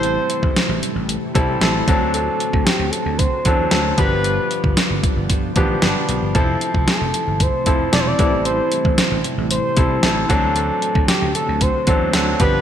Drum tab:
HH |x-x-x-x-x-x-x-x-|x-x-x-x-x-x-x-x-|x-x-x-x-x-x-x-x-|x-x-x-x-x-x-x-x-|
SD |----o-------o---|----o-------o---|----o-------o---|----o-------o---|
BD |---o------o---o-|---o----o-o---o-|---o--o-o-o-----|o--o----o-o---o-|

HH |x-x-x-x-x-x-x-x-|x-x-x-x-x-x-x-x-|
SD |----o-------o---|----o-------o---|
BD |---o------o---o-|---o----o-o---o-|